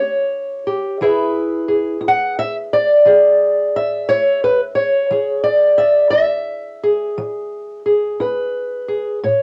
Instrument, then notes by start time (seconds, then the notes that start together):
steel-string acoustic guitar
Already playing: C#4 G4 C#5
0.67 G4
1.01 E3 E4 G#4 B4 E5
1.68 G#4
2.01 E4
2.08 F#5
2.39 E5
2.73 D5
3.05 E3 G#4
3.76 E5
4.09 E4 C#5
4.44 B4
4.75 C#5
5.11 E3 G#4
5.43 D5
5.78 E5
6.10 E4 E5
6.84 G#4
7.18 E3
7.86 G#4
8.20 E4 B4
8.88 G#4
9.24 A2 C#5